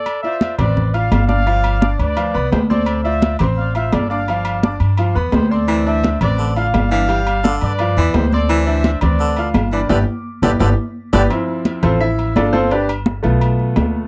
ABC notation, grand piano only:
X:1
M:4/4
L:1/8
Q:1/4=171
K:Gmix
V:1 name="Grand piano"
z [Fd]2 [Cd]2 [Fff']2 [Ddd'] | [F,Ff]2 [Ddd']2 [F,Ff] [B,Bb]2 [Ccc']- | [Ccc'] [Fd]2 [Ccc']2 [Fff']2 [Ddd'] | [F,Ff]2 [Ddd']2 [F,Ff] [B,Bb]2 [Ccc']- |
[Ccc'] [Dd]2 [Cd]2 [Fff']2 [Ddd'] | [G,Gf]2 [Ddd']2 [F,Ff] [B,Bb]2 [Ccc']- | [Ccc'] [Dd]2 [Cd]2 [Fff']2 [Ddd'] | [GBd] z2 [GBd] [GBd] z2 [GBd] |
z3 [CFAc] [Ee]2 [DFAd] [CFAc] | [DGBd] z6 z |]
V:2 name="Grand piano"
z8 | z8 | z8 | z8 |
z8 | z8 | z8 | z8 |
[F,CE]8 | z3 [A,B,F]4- [A,B,F] |]